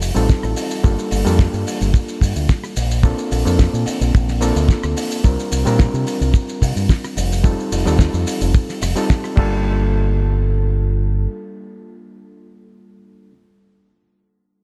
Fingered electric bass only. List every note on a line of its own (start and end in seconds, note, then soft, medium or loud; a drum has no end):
0.00 0.10 F1 loud
0.16 0.26 A1 loud
0.43 0.53 A1 loud
0.84 0.95 G1 loud
1.12 1.22 G1 medium
1.26 1.46 F2 loud
1.53 1.63 G2 loud
1.81 1.91 G1 loud
2.21 2.32 G2 medium
2.36 2.46 D2 loud
2.77 3.13 A#1 loud
3.32 3.42 A#1 medium
3.46 3.66 F2 loud
3.73 3.83 A#2 loud
3.87 muted fingered electric bass stroke soft
4.01 4.11 A#1 loud
4.15 4.51 A#1 loud
4.56 4.66 D2 loud
4.83 4.93 D2 loud
5.24 5.35 C2 loud
5.52 5.63 C2 medium
5.66 5.87 A#2 loud
5.94 6.04 C3 loud
6.21 6.31 C2 loud
6.62 6.73 C3 medium
6.76 6.86 G2 loud
7.17 7.53 F1 loud
7.72 7.83 F1 medium
7.86 8.07 D#2 loud
8.14 8.24 F2 loud
8.27 muted fingered electric bass stroke soft
8.41 8.51 F1 loud
8.82 8.93 F1 loud
9.37 11.26 G1 loud